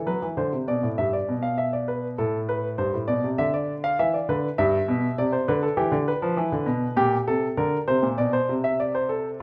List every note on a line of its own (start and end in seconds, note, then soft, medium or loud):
0.06 0.21 F#3 medium
0.06 0.26 B4 medium
0.22 0.37 E3 medium
0.37 0.52 D3 medium
0.37 0.56 C5 medium
0.53 0.67 C3 medium
0.68 0.82 B2 medium
0.68 0.87 D5 medium
0.83 0.97 A2 medium
0.98 1.17 G2 medium
0.98 1.13 E5 medium
1.13 1.32 D5 medium
1.29 2.16 B2 medium
1.43 1.57 F5 medium
1.58 1.72 E5 medium
1.73 1.88 D5 medium
1.88 2.07 B4 medium
2.18 2.76 A2 medium
2.18 2.37 A4 medium
2.49 2.67 B4 medium
2.78 2.93 G2 medium
2.78 2.97 C5 medium
2.93 3.08 A2 medium
3.08 3.23 B2 medium
3.08 3.26 D5 medium
3.24 3.38 C3 medium
3.38 3.97 D3 medium
3.38 3.53 E5 medium
3.54 3.72 D5 medium
3.84 3.98 F5 medium
3.99 4.18 E3 medium
3.99 4.13 E5 medium
4.14 4.28 D5 medium
4.29 4.47 D3 medium
4.29 4.47 B4 medium
4.58 4.77 G2 medium
4.58 5.16 E5 medium
4.88 5.07 B2 medium
5.18 5.37 C3 medium
5.18 5.33 D5 medium
5.33 5.47 C5 medium
5.48 5.67 D3 medium
5.48 5.62 B4 medium
5.63 5.77 A4 medium
5.77 5.92 E3 medium
5.77 5.96 G4 medium
5.92 6.10 D3 medium
6.08 6.95 B4 medium
6.22 6.37 F3 medium
6.37 6.52 E3 medium
6.52 6.67 D3 medium
6.66 6.85 B2 medium
6.97 7.15 A#2 medium
6.97 7.16 G4 medium
7.27 7.46 C3 medium
7.27 7.46 A4 medium
7.57 7.76 D3 medium
7.57 7.76 A#4 medium
7.88 8.02 C3 medium
7.88 8.06 C5 medium
8.03 8.17 A#2 medium
8.18 8.37 B2 medium
8.18 8.33 D5 medium
8.33 8.52 C5 medium
8.49 9.37 C3 medium
8.64 8.79 E5 medium
8.80 8.94 D5 medium
8.95 9.09 C5 medium
9.09 9.28 A4 medium